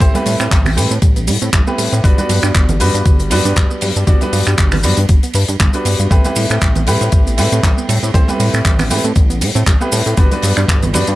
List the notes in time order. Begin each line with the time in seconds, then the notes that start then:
0.00 A1 G3 A3 C4 E4 G4 C5, kick, closed hi-hat, shaker
0.14 A3 B3 C4 E4 G4 B4, closed hi-hat, high conga, shaker
0.26 A2 G3, open hi-hat, ride, shaker
0.40 A2 C4, finger snap, closed hi-hat, shaker
0.51 A1 G3, kick, clap, closed hi-hat, shaker
0.65 B3, finger snap, open hi-hat, low conga, shaker
0.76 A2 G3 A3 C4 E4 G4 B4, open hi-hat, ride, shaker
0.91 A2 C4, closed hi-hat, shaker
1.02 A1 G3, kick, closed hi-hat, shaker
1.16 B3, closed hi-hat, shaker
1.28 A2 G3, open hi-hat, ride, shaker
1.42 A2 C4, closed hi-hat, shaker
1.53 A1 G3, kick, clap, closed hi-hat, high conga, shaker
1.67 A3 B3 C4 E4 G4 B4, shaker
1.78 A2 G3, open hi-hat, ride, shaker
1.92 A2 C4, closed hi-hat, shaker
2.04 G1 F#3 G3 B3 D4 F#4 B4, kick, closed hi-hat, shaker
2.17 G3 B3 D4 F#4 B4, closed hi-hat, high conga, shaker
2.29 G2 F#3, open hi-hat, ride, shaker
2.43 G2 D4, finger snap, closed hi-hat, shaker
2.55 G1 F#3, kick, clap, closed hi-hat, shaker
2.69 B3, closed hi-hat, low conga, shaker
2.80 G2 F#3 G3 B3 D4 F#4 B4, open hi-hat, ride, high conga, shaker
2.94 G2 D4, closed hi-hat, shaker
3.06 G1 F#3, kick, closed hi-hat, shaker
3.19 B3, closed hi-hat, shaker
3.30 G2 F#3 G3 B3 D4 F#4 B4, open hi-hat, ride, shaker
3.45 G2 D4, closed hi-hat, shaker
3.56 G1 F#3, kick, clap, closed hi-hat, high conga, shaker
3.71 B3, shaker
3.81 G2 F#3, open hi-hat, ride, shaker
3.96 G2 D4, closed hi-hat, shaker
4.07 G1 F#3 G3 B3 D4 F#4 D5, kick, closed hi-hat, shaker
4.21 G3 B3 D4 F#4 B4, closed hi-hat, high conga, shaker
4.33 G2 F#3, open hi-hat, ride, shaker
4.47 G2 D4, finger snap, closed hi-hat, shaker
4.58 G1 F#3, kick, clap, closed hi-hat, shaker
4.72 B3, finger snap, open hi-hat, low conga, shaker
4.83 G2 F#3 G3 B3 D4 F#4 B4, open hi-hat, ride, shaker
4.97 G2 D4, closed hi-hat, shaker
5.09 G1 F#3, kick, closed hi-hat, shaker
5.23 B3, closed hi-hat, shaker
5.34 G2 B4, open hi-hat, ride, shaker
5.48 G2 D4, closed hi-hat, shaker
5.60 G1 B3, kick, clap, closed hi-hat, high conga, shaker
5.73 G3 B3 D4 F#4 B4, closed hi-hat, shaker
5.85 G2 B3, open hi-hat, ride, shaker
5.99 G2 G3, closed hi-hat, shaker
6.10 A1 G3 A3 C4 E4 G4 B4, kick, closed hi-hat, shaker
6.24 A3 B3 C4 E4 G4 B4, closed hi-hat, high conga, shaker
6.36 A2 G3, open hi-hat, ride, shaker
6.50 A2 C4, finger snap, closed hi-hat, shaker
6.62 A1 G3, kick, clap, closed hi-hat, shaker
6.75 B3, closed hi-hat, low conga, shaker
6.87 A2 G3 A3 C4 E4 G4 B4, open hi-hat, ride, high conga, shaker
7.01 A2 C4, closed hi-hat, shaker
7.12 A1 G3, kick, closed hi-hat, shaker
7.27 B3, closed hi-hat, shaker
7.37 A2 G3 A3 C4 E4 G4 B4, open hi-hat, ride, shaker
7.52 A2 C4, closed hi-hat, shaker
7.63 A1 G3, kick, clap, closed hi-hat, high conga, shaker
7.77 B3, shaker
7.89 A2 G3, open hi-hat, ride, shaker
8.03 A2 C4, closed hi-hat, shaker
8.14 A1 G3 A3 C4 E4 G4 C5, kick, closed hi-hat, shaker
8.27 A3 B3 C4 E4 G4 B4, closed hi-hat, high conga, shaker
8.40 A2 G3, open hi-hat, ride, shaker
8.54 A2 C4, finger snap, closed hi-hat, shaker
8.65 A1 G3, kick, clap, closed hi-hat, shaker
8.79 B3, finger snap, open hi-hat, low conga, shaker
8.90 A2 G3 A3 C4 E4 G4 B4, open hi-hat, ride, shaker
9.04 A2 C4, closed hi-hat, shaker
9.16 A1 G3, kick, closed hi-hat, shaker
9.30 B3, closed hi-hat, shaker
9.41 A2 G3, open hi-hat, ride, shaker
9.55 A2 C4, closed hi-hat, shaker
9.66 A1 G3, kick, clap, closed hi-hat, high conga, shaker
9.80 A3 B3 C4 E4 G4 B4, shaker
9.92 A2 G3, open hi-hat, ride, shaker
10.06 A2 C4, closed hi-hat, shaker
10.17 G1 F#3 G3 B3 D4 F#4 B4, kick, closed hi-hat, shaker
10.31 G3 B3 D4 F#4 B4, closed hi-hat, high conga, shaker
10.42 G2 F#3, open hi-hat, ride, shaker
10.57 G2 D4, finger snap, closed hi-hat, shaker
10.68 G1 F#3, kick, clap, closed hi-hat, shaker
10.82 B3, closed hi-hat, low conga, shaker
10.93 G2 F#3 G3 B3 D4 F#4 B4, open hi-hat, ride, high conga, shaker
11.07 G2 D4, closed hi-hat, shaker